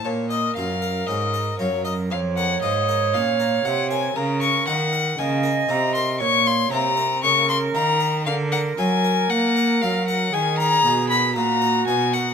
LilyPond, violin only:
\new Staff \with { instrumentName = "Violin" } { \time 4/4 \key bes \minor \tempo 4 = 58 des''16 ees''16 f''8 ees''8 des''16 ees''16 f''16 ges''16 ees''8 f''8 ges''16 aes''16 | bes''16 des'''16 ges''8 aes''8 bes''16 c'''16 des'''16 c'''16 bes''8 des'''16 c'''16 bes''8 | \key ees \minor f''16 ges''16 aes''8 ges''8 f''16 ges''16 aes''16 bes''8 ces'''16 bes''8 aes''16 ges''16 | }